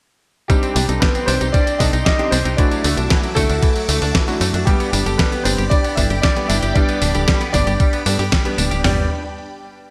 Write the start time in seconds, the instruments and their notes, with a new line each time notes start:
0.48 clean electric guitar G3, grand piano G3 G4, electric grand piano C4 D4 D#4 G4, string machine G4 C6 D6, kick, closed hi-hat, tambourine
0.63 clean electric guitar C4, closed hi-hat, tambourine
0.74 analog synth bass C2, grand piano G3 G4, clean electric guitar D4, open hi-hat, tambourine
0.89 analog synth bass C2, electric grand piano C4 D4 D#4 A4, clean electric guitar D#4, closed hi-hat, tambourine
1.00 clean electric guitar G3, grand piano B3 B4, kick, snare, closed hi-hat, tambourine
1.15 clean electric guitar C4, closed hi-hat, tambourine
1.26 analog synth bass C2, electric grand piano C4 D4 D#4 G4, grand piano C4 C5, clean electric guitar D4, open hi-hat, tambourine
1.41 analog synth bass C2, clean electric guitar D#4, closed hi-hat, tambourine
1.52 clean electric guitar G3, grand piano D4 D5, kick, closed hi-hat, tambourine
1.67 clean electric guitar C4, closed hi-hat, tambourine
1.78 analog synth bass C2, electric grand piano C4 D4 D#4 A4, clean electric guitar D4, grand piano D#4 D#5, kick, open hi-hat, tambourine
1.93 analog synth bass C2, clean electric guitar D#4, closed hi-hat, tambourine
2.05 clean electric guitar G3, grand piano D#4 D#5, kick, snare, closed hi-hat, tambourine
2.19 clean electric guitar C4, electric grand piano C4 D4 D#4 G4, closed hi-hat
2.31 analog synth bass C2, grand piano C4 C5, clean electric guitar D4, open hi-hat, tambourine
2.45 analog synth bass C2, clean electric guitar D#4, closed hi-hat, tambourine
2.57 clean electric guitar E3, electric grand piano A3 D4 E4 F#4, grand piano D4 D5, string machine F#4 E5 A5, kick, closed hi-hat, tambourine
2.71 clean electric guitar F#3, closed hi-hat, tambourine
2.84 analog synth bass D2, clean electric guitar A3, open hi-hat, tambourine
2.97 analog synth bass C2, electric grand piano A3 D4 E4 A4, clean electric guitar D4, closed hi-hat, tambourine
3.10 clean electric guitar E3, kick, snare, closed hi-hat, tambourine
3.23 clean electric guitar F#3, closed hi-hat, tambourine
3.35 analog synth bass D2, clean electric guitar A3, electric grand piano A3 D4 E4 F#4, grand piano A3 A4, kick, open hi-hat, tambourine
3.50 analog synth bass D2, clean electric guitar D4, closed hi-hat, tambourine
3.63 clean electric guitar E3, kick, closed hi-hat, tambourine
3.76 clean electric guitar F#3, closed hi-hat, tambourine
3.89 analog synth bass D2, clean electric guitar A3, electric grand piano A3 D4 E4 A4, open hi-hat, tambourine
4.02 analog synth bass D2, clean electric guitar D4, open hi-hat, tambourine
4.15 clean electric guitar E3, kick, snare, closed hi-hat, tambourine
4.28 clean electric guitar F#3, electric grand piano A3 D4 E4 F#4, closed hi-hat, tambourine
4.41 analog synth bass F#2, clean electric guitar A3, open hi-hat, tambourine
4.54 analog synth bass F#2, clean electric guitar D4, closed hi-hat, tambourine
4.65 electric grand piano G3 B3 D4 G4, clean electric guitar G3, grand piano G3 G4, string machine G4 D5 B5, kick, closed hi-hat, tambourine
4.80 clean electric guitar B3, closed hi-hat, tambourine
4.91 analog synth bass G1, grand piano G3 G4, clean electric guitar D4, open hi-hat, tambourine
5.06 analog synth bass G1, electric grand piano G3 B3 D4 A4, clean electric guitar G4, closed hi-hat, tambourine
5.18 clean electric guitar G3, grand piano B3 B4, kick, snare, closed hi-hat, tambourine
5.32 clean electric guitar B3, closed hi-hat, tambourine
5.44 analog synth bass G1, electric grand piano G3 B3 D4 G4, grand piano C4 C5, clean electric guitar D4, open hi-hat, tambourine
5.58 analog synth bass G1, clean electric guitar G4, closed hi-hat, tambourine
5.70 clean electric guitar G3, grand piano D4 D5, kick, closed hi-hat, tambourine
5.84 clean electric guitar B3, closed hi-hat, tambourine
5.95 analog synth bass G1, electric grand piano G3 B3 D4 A4, clean electric guitar D4, grand piano E4 E5, kick, open hi-hat, tambourine
6.10 analog synth bass G1, clean electric guitar G4, closed hi-hat, tambourine
6.22 clean electric guitar G3, grand piano D4 D5, kick, snare, closed hi-hat, tambourine
6.36 electric grand piano G3 B3 D4 G4, clean electric guitar B3, closed hi-hat
6.48 analog synth bass G1, clean electric guitar D4, grand piano E4 E5, open hi-hat, tambourine
6.63 analog synth bass G1, clean electric guitar G4, closed hi-hat, tambourine
6.74 electric grand piano G3 B3 D4 G4, clean electric guitar G3, grand piano D4 D5, kick, closed hi-hat, tambourine
6.89 clean electric guitar B3, closed hi-hat, tambourine
7.02 analog synth bass D1, clean electric guitar D4, open hi-hat, tambourine
7.15 analog synth bass D1, electric grand piano G3 B3 D4 A4, clean electric guitar G4, closed hi-hat, tambourine
7.28 clean electric guitar G3, kick, snare, closed hi-hat, tambourine
7.41 clean electric guitar B3, closed hi-hat, tambourine
7.53 analog synth bass G1, electric grand piano G3 B3 D4 G4, clean electric guitar D4, grand piano D4 D5, kick, open hi-hat, tambourine
7.67 analog synth bass G1, clean electric guitar G4, closed hi-hat, tambourine
7.80 clean electric guitar G3, kick, closed hi-hat, tambourine
7.93 clean electric guitar B3, closed hi-hat, tambourine
8.06 analog synth bass G2, electric grand piano G3 B3 D4 A4, clean electric guitar D4, open hi-hat, tambourine
8.19 analog synth bass G2, clean electric guitar G4, open hi-hat, tambourine
8.32 clean electric guitar G3, kick, snare, closed hi-hat, tambourine
8.45 electric grand piano G3 B3 D4 G4, clean electric guitar B3, closed hi-hat, tambourine
8.58 analog synth bass D1, clean electric guitar D4, open hi-hat, tambourine
8.71 analog synth bass D1, clean electric guitar G4, closed hi-hat, tambourine
8.84 analog synth bass G1, clean electric guitar G3, electric grand piano G3 B3 D4 G4, string machine D4 G4 B4 G5 B5, grand piano D5, snare, floor tom, open hi-hat